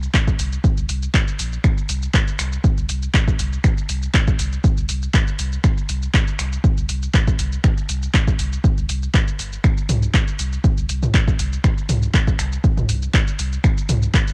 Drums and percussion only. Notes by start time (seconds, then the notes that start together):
0.03 shaker
0.14 kick, clap, shaker
0.28 kick, shaker
0.39 open hi-hat, shaker
0.53 shaker
0.64 kick, shaker
0.78 shaker
0.89 open hi-hat, shaker
1.03 shaker
1.14 kick, clap, shaker
1.28 shaker
1.39 open hi-hat, shaker
1.53 shaker
1.64 finger snap, kick, shaker
1.78 shaker
1.89 open hi-hat, shaker
2.03 shaker
2.14 kick, clap, shaker
2.28 shaker
2.39 finger snap, open hi-hat, shaker
2.53 shaker
2.64 kick, shaker
2.78 shaker
2.89 open hi-hat, shaker
3.03 shaker
3.14 kick, clap, shaker
3.27 kick, shaker
3.39 open hi-hat, shaker
3.53 shaker
3.64 finger snap, kick, shaker
3.78 shaker
3.89 open hi-hat, shaker
4.03 shaker
4.14 kick, clap, shaker
4.28 kick, shaker
4.39 open hi-hat, shaker
4.53 shaker
4.64 kick, shaker
4.78 shaker
4.89 open hi-hat, shaker
5.02 shaker
5.14 kick, clap, shaker
5.27 shaker
5.39 open hi-hat, shaker
5.53 shaker
5.64 finger snap, kick, shaker
5.78 shaker
5.89 open hi-hat, shaker
6.03 shaker
6.14 kick, clap, shaker
6.28 shaker
6.39 finger snap, open hi-hat, shaker
6.53 shaker
6.64 kick, shaker
6.78 shaker
6.89 open hi-hat, shaker
7.03 shaker
7.14 kick, clap, shaker
7.28 kick, shaker
7.39 open hi-hat, shaker
7.53 shaker
7.64 finger snap, kick, shaker
7.77 shaker
7.89 open hi-hat, shaker
8.03 shaker
8.14 kick, clap, shaker
8.28 kick, shaker
8.39 open hi-hat, shaker
8.53 shaker
8.64 kick, shaker
8.78 shaker
8.89 open hi-hat, shaker
9.03 shaker
9.14 kick, clap, shaker
9.28 shaker
9.39 open hi-hat, shaker
9.53 shaker
9.64 finger snap, kick, shaker
9.78 shaker
9.89 mid tom, open hi-hat, shaker
10.03 shaker
10.14 kick, clap, shaker
10.28 shaker
10.39 open hi-hat, shaker
10.53 shaker
10.64 kick, shaker
10.78 shaker
10.89 open hi-hat, shaker
11.03 mid tom, shaker
11.14 kick, clap, shaker
11.28 kick, shaker
11.39 open hi-hat, shaker
11.53 shaker
11.64 finger snap, kick, shaker
11.78 shaker
11.89 mid tom, open hi-hat, shaker
12.03 shaker
12.14 kick, clap, shaker
12.27 kick, shaker
12.39 finger snap, open hi-hat, shaker
12.53 shaker
12.64 kick, shaker
12.77 mid tom, shaker
12.89 open hi-hat, shaker
13.03 shaker
13.14 kick, clap, shaker
13.28 shaker
13.39 open hi-hat, shaker
13.53 shaker
13.64 finger snap, kick, shaker
13.78 shaker
13.89 mid tom, open hi-hat, shaker
14.03 shaker
14.14 kick, clap, shaker
14.28 shaker